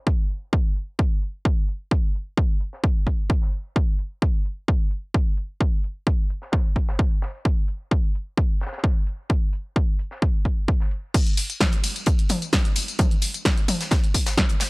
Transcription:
0.07 kick loud
0.30 closed hi-hat medium
0.53 kick loud
0.76 closed hi-hat medium
0.99 kick loud
1.22 closed hi-hat medium
1.45 kick loud
1.68 closed hi-hat medium
1.91 kick loud
2.15 closed hi-hat medium
2.37 kick loud
2.60 closed hi-hat medium
2.73 snare soft
2.84 kick loud
3.07 kick medium
3.30 kick loud
3.42 snare soft
3.53 closed hi-hat medium
3.76 kick loud
3.99 closed hi-hat medium
4.22 kick loud
4.45 closed hi-hat medium
4.68 kick loud
4.91 closed hi-hat medium
5.14 kick loud
5.37 closed hi-hat medium
5.61 kick loud
5.84 closed hi-hat medium
6.07 kick loud
6.30 closed hi-hat medium
6.42 snare soft
6.52 kick loud
6.52 snare loud
6.76 kick medium
6.88 snare loud
6.88 closed hi-hat medium
6.99 kick loud
7.11 closed hi-hat medium
7.22 snare medium
7.22 closed hi-hat medium
7.45 kick loud
7.68 closed hi-hat medium
7.91 kick loud
8.15 closed hi-hat medium
8.38 kick loud
8.61 snare medium
8.61 closed hi-hat medium
8.66 snare medium
8.66 closed hi-hat medium
8.73 snare medium
8.73 closed hi-hat medium
8.78 snare medium
8.78 closed hi-hat medium
8.84 kick loud
9.07 closed hi-hat medium
9.30 kick loud
9.53 closed hi-hat medium
9.76 kick loud
9.99 closed hi-hat medium
10.11 snare medium
10.22 kick loud
10.45 kick medium
10.45 closed hi-hat medium
10.68 kick loud
10.80 snare soft
10.91 closed hi-hat medium
11.14 kick loud
11.14 closed hi-hat medium
11.14 crash loud
11.14 tambourine soft
11.27 closed hi-hat medium
11.37 closed hi-hat medium
11.37 open hi-hat loud
11.37 ride medium
11.37 tambourine medium
11.50 closed hi-hat medium
11.50 tambourine soft
11.61 kick loud
11.61 snare loud
11.61 closed hi-hat medium
11.61 mid tom medium
11.61 tambourine soft
11.72 closed hi-hat soft
11.72 closed hi-hat medium
11.84 closed hi-hat medium
11.84 open hi-hat medium
11.84 ride medium
11.84 tambourine medium
11.96 closed hi-hat medium
11.96 tambourine soft
12.06 kick loud
12.06 closed hi-hat loud
12.06 closed hi-hat medium
12.06 tambourine soft
12.19 closed hi-hat medium
12.29 closed hi-hat medium
12.29 open hi-hat loud
12.29 mid tom medium
12.29 ride medium
12.29 tambourine medium
12.42 closed hi-hat medium
12.42 tambourine soft
12.53 kick loud
12.53 snare loud
12.53 closed hi-hat medium
12.53 tambourine soft
12.65 closed hi-hat medium
12.76 closed hi-hat medium
12.76 open hi-hat medium
12.76 ride medium
12.76 tambourine medium
12.88 closed hi-hat medium
12.88 tambourine soft
12.99 kick loud
12.99 closed hi-hat loud
12.99 closed hi-hat medium
12.99 mid tom medium
12.99 tambourine soft
13.11 closed hi-hat medium
13.22 closed hi-hat medium
13.22 open hi-hat loud
13.22 ride medium
13.22 tambourine medium
13.34 closed hi-hat medium
13.34 tambourine soft
13.45 kick loud
13.45 snare loud
13.45 closed hi-hat loud
13.45 closed hi-hat medium
13.45 tambourine soft
13.57 closed hi-hat medium
13.68 closed hi-hat medium
13.68 open hi-hat loud
13.68 mid tom medium
13.68 ride medium
13.68 tambourine medium
13.81 snare soft
13.81 closed hi-hat medium
13.81 tambourine soft
13.91 kick loud
13.91 snare loud
13.91 snare soft
13.91 closed hi-hat medium
13.91 tambourine soft
14.04 closed hi-hat medium
14.14 kick medium
14.14 closed hi-hat medium
14.14 open hi-hat loud
14.14 ride medium
14.14 tambourine medium
14.26 snare loud
14.26 closed hi-hat medium
14.26 tambourine soft
14.37 kick loud
14.37 snare loud
14.37 closed hi-hat medium
14.37 mid tom medium
14.37 tambourine soft
14.49 closed hi-hat medium
14.60 snare loud
14.60 closed hi-hat medium
14.60 open hi-hat medium
14.60 ride medium
14.60 tambourine medium

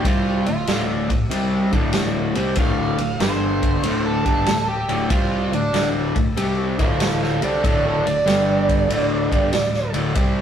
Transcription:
0.04 0.44 C2 medium
0.04 0.45 C3 medium
0.04 0.46 G3 medium
0.04 0.46 C4 loud
0.04 0.47 F4 medium
0.04 kick loud
0.04 ride medium
0.46 0.67 D1 medium
0.46 0.64 D2 medium
0.46 0.65 A2 medium
0.46 0.82 F4 medium
0.46 ride medium
0.67 1.08 D1 medium
0.67 1.08 D2 medium
0.67 1.09 A2 medium
0.67 1.09 D3 loud
0.67 snare loud
0.67 ride medium
1.10 1.30 D1 medium
1.10 1.27 D2 medium
1.10 1.27 A2 medium
1.10 kick medium
1.10 ride medium
1.31 1.72 C2 medium
1.31 1.72 C3 medium
1.31 1.72 G3 medium
1.31 1.72 C4 medium
1.31 ride medium
1.72 2.32 D1 medium
1.72 2.35 D2 medium
1.72 2.35 A2 medium
1.72 2.35 D3 medium
1.72 kick medium
1.72 ride medium
1.93 snare loud
1.93 ride medium
2.35 2.57 C2 medium
2.35 2.57 C3 medium
2.35 2.57 G3 medium
2.35 2.58 C4 medium
2.35 ride medium
2.55 2.97 D1 medium
2.55 2.98 D2 medium
2.55 2.98 A2 medium
2.55 2.99 D3 loud
2.55 kick loud
2.55 ride medium
2.60 2.78 F5 medium
2.80 3.20 F5 medium
2.98 3.19 D1 medium
2.98 3.16 D2 medium
2.98 3.17 A2 medium
2.98 ride medium
3.20 3.80 G1 medium
3.20 3.83 G2 medium
3.20 3.84 D3 medium
3.20 3.84 G3 medium
3.20 4.03 C5 medium
3.20 snare loud
3.20 ride medium
3.62 kick medium
3.62 ride medium
3.83 4.23 D1 loud
3.83 4.25 D2 medium
3.83 4.25 A2 medium
3.83 4.25 D3 medium
3.83 ride medium
4.06 4.67 A4 medium
4.26 4.46 G1 medium
4.26 4.47 G2 medium
4.26 4.47 D3 medium
4.26 4.47 G3 medium
4.26 kick medium
4.26 ride medium
4.46 4.87 D1 medium
4.46 4.81 D2 medium
4.46 4.81 A2 medium
4.46 snare loud
4.46 ride medium
4.68 5.09 G4 medium
4.89 5.09 D1 medium
4.89 5.10 D2 medium
4.89 5.10 A2 medium
4.89 5.10 D3 medium
4.89 ride medium
5.10 5.50 C2 medium
5.10 5.51 C3 medium
5.10 5.52 G3 loud
5.10 5.52 C4 loud
5.10 5.52 F4 medium
5.10 kick loud
5.10 ride medium
5.52 5.72 D1 medium
5.52 5.70 D2 medium
5.52 5.70 A2 medium
5.52 5.88 D4 medium
5.52 ride medium
5.73 6.13 D1 medium
5.73 6.14 D2 medium
5.73 6.14 A2 medium
5.73 6.15 D3 medium
5.73 snare loud
5.73 ride medium
6.16 6.36 D1 medium
6.16 6.33 D2 medium
6.16 6.33 A2 medium
6.16 kick medium
6.16 ride medium
6.36 6.76 C2 loud
6.36 6.78 C3 medium
6.36 6.78 G3 medium
6.36 6.78 C4 medium
6.36 ride medium
6.79 7.38 D1 medium
6.79 7.41 D2 medium
6.79 7.41 A2 medium
6.79 7.41 D3 medium
6.79 7.00 C5 medium
6.79 7.00 F5 loud
6.79 kick medium
6.79 ride medium
7.00 7.20 C5 medium
7.00 7.21 F5 medium
7.00 snare loud
7.00 ride medium
7.22 7.41 C5 medium
7.22 7.42 F5 medium
7.22 snare soft
7.42 7.62 C2 medium
7.42 7.63 C3 medium
7.42 7.63 G3 medium
7.42 7.64 C4 medium
7.42 7.62 A4 medium
7.42 7.64 D5 medium
7.42 ride medium
7.64 8.03 D1 medium
7.64 8.04 D2 medium
7.64 8.05 A2 loud
7.64 8.05 D3 loud
7.64 7.84 A4 medium
7.64 7.85 D5 medium
7.64 kick loud
7.64 ride medium
7.86 8.05 A4 medium
7.86 8.06 D5 medium
8.05 8.25 D1 medium
8.05 8.23 D2 medium
8.05 8.23 A2 medium
8.05 9.92 D5 medium
8.05 ride medium
8.26 8.85 G1 medium
8.26 8.89 G2 medium
8.26 8.89 D3 medium
8.26 8.89 G3 medium
8.26 snare loud
8.26 ride medium
8.69 kick medium
8.69 ride medium
8.89 9.29 D1 loud
8.89 9.30 D2 medium
8.89 9.30 A2 medium
8.89 9.30 D3 medium
8.89 ride medium
9.31 9.52 G1 medium
9.31 9.52 G2 medium
9.31 9.52 D3 medium
9.31 9.53 G3 medium
9.31 kick medium
9.31 ride medium
9.53 9.92 D1 medium
9.53 9.86 D2 medium
9.53 9.86 A2 medium
9.53 snare loud
9.53 ride medium
9.74 snare soft
9.93 10.15 D1 medium
9.93 10.15 D2 medium
9.93 10.15 A2 medium
9.93 10.15 D3 loud
9.93 ride medium
10.15 10.41 C2 medium
10.15 10.41 C3 medium
10.15 10.41 G3 loud
10.15 10.41 C4 loud
10.15 kick loud
10.15 ride medium

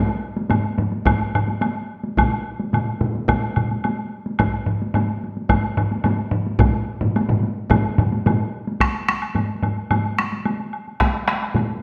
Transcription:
0.37 taiko high medium
0.50 taiko low-mid loud
0.50 taiko high medium
0.50 high woodblock soft
0.78 taiko low-mid medium
0.78 taiko high medium
0.92 taiko high medium
1.05 taiko medium
1.05 taiko low-mid loud
1.05 taiko high medium
1.05 high woodblock medium
1.35 taiko low-mid medium
1.35 high woodblock soft
1.48 taiko high soft
1.61 taiko high medium
1.61 high woodblock soft
2.04 taiko high soft
2.17 taiko medium
2.17 taiko mid loud
2.17 taiko high medium
2.17 high woodblock medium
2.60 taiko high medium
2.73 taiko mid medium
2.73 taiko high medium
2.73 high woodblock soft
3.01 taiko mid medium
3.01 taiko high soft
3.15 taiko high soft
3.28 taiko loud
3.28 taiko mid medium
3.28 taiko high medium
3.28 high woodblock medium
3.56 taiko mid medium
3.56 high woodblock soft
3.71 taiko high soft
3.84 taiko high medium
3.84 high woodblock soft
4.26 taiko high soft
4.39 taiko medium
4.39 taiko low-mid medium
4.39 taiko high medium
4.39 high woodblock medium
4.66 taiko low-mid medium
4.82 taiko high soft
4.94 taiko low-mid medium
4.94 taiko high medium
4.94 high woodblock soft
5.24 taiko high soft
5.37 taiko high soft
5.49 taiko medium
5.49 taiko low-mid medium
5.49 taiko high medium
5.49 high woodblock medium
5.77 taiko low-mid loud
5.77 high woodblock soft
5.91 taiko high medium
6.04 taiko low-mid medium
6.04 taiko high medium
6.04 high woodblock soft
6.31 taiko low-mid loud
6.47 taiko high medium
6.59 taiko loud
6.59 taiko low-mid medium
6.59 taiko mid medium
6.59 taiko high medium
6.59 high woodblock soft
7.01 taiko low-mid loud
7.01 taiko mid medium
7.01 taiko high medium
7.16 taiko high medium
7.16 high woodblock soft
7.29 taiko low-mid medium
7.29 taiko mid medium
7.43 taiko high medium
7.70 taiko loud
7.70 taiko low-mid medium
7.70 taiko mid medium
7.70 taiko high medium
7.70 high woodblock soft
7.98 taiko low-mid loud
7.98 taiko mid medium
7.98 high woodblock soft
8.12 taiko high medium
8.26 taiko low-mid medium
8.26 taiko mid medium
8.26 taiko high medium
8.26 high woodblock soft
8.67 taiko high medium
8.80 taiko rim medium
8.80 taiko medium
8.80 taiko high medium
8.80 high woodblock soft
8.95 taiko high soft
9.09 taiko rim medium
9.09 taiko high soft
9.22 taiko high soft
9.22 high woodblock soft
9.35 taiko low-mid medium
9.35 taiko high medium
9.35 high woodblock soft
9.50 taiko high soft
9.63 taiko low-mid medium
9.63 taiko high soft
9.63 high woodblock soft
9.77 taiko high soft
9.91 taiko low-mid medium
9.91 taiko high medium
9.91 high woodblock soft
10.06 taiko high soft
10.19 taiko rim medium
10.19 taiko high soft
10.32 taiko high soft
10.45 taiko high medium
10.45 high woodblock soft
10.60 taiko high soft
10.73 high woodblock soft
10.88 taiko high soft
11.00 taiko rim medium
11.00 taiko medium
11.00 taiko high medium
11.00 high woodblock soft
11.15 taiko high soft
11.28 taiko rim medium
11.28 taiko high soft
11.42 taiko high soft
11.42 high woodblock soft
11.54 taiko mid medium
11.54 taiko high medium
11.54 high woodblock soft
11.69 taiko high soft

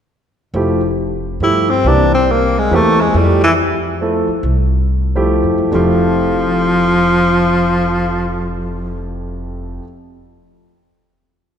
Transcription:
0.54 1.37 F1 medium
0.54 0.80 F3 medium
0.54 0.80 A3 medium
0.54 0.80 E4 medium
0.54 0.80 G4 medium
1.40 1.81 G2 medium
1.40 1.66 F3 soft
1.40 1.67 A3 soft
1.40 1.67 E4 soft
1.40 1.71 E4 medium
1.40 1.67 G4 medium
1.70 1.89 C4 medium
1.84 2.67 C2 medium
1.84 2.10 E3 medium
1.84 2.10 A#3 medium
1.84 2.10 C4 medium
1.84 2.14 D4 medium
1.84 2.11 G4 medium
2.15 2.33 C4 medium
2.31 2.60 A#3 medium
2.59 2.76 G#3 medium
2.71 3.11 E2 medium
2.71 2.96 E3 medium
2.71 2.96 A#3 medium
2.71 2.97 C4 medium
2.71 2.97 G4 medium
2.75 3.03 A3 medium
3.01 3.18 G#3 medium
3.14 4.24 F2 medium
3.14 3.40 F3 medium
3.14 3.43 G3 medium
3.14 3.40 A3 medium
3.14 3.40 E4 medium
3.14 3.41 G4 medium
3.44 3.52 E3 medium
4.01 4.26 F3 medium
4.01 4.26 A3 medium
4.01 4.27 E4 medium
4.01 4.27 A4 medium
4.28 muted upright bass stroke soft
4.43 5.40 C2 medium
5.15 5.70 F3 medium
5.15 5.70 A3 medium
5.15 5.71 E4 medium
5.15 5.71 G4 medium
5.44 5.57 F2 medium
5.58 5.72 F#2 medium
5.71 9.77 F1 medium
5.71 9.81 F2 medium
5.71 9.81 F3 medium
5.71 9.08 F3 medium
5.71 9.82 A3 medium
5.71 9.82 E4 medium
5.71 9.82 G4 medium

